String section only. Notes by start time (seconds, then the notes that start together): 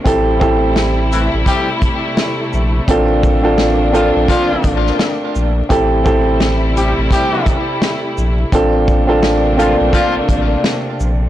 Already playing: C3
0.05 G3 A3 E4
2.89 A#3 D4
5.71 C3 G3 A3 E4
8.53 C3 A3 A#3 D4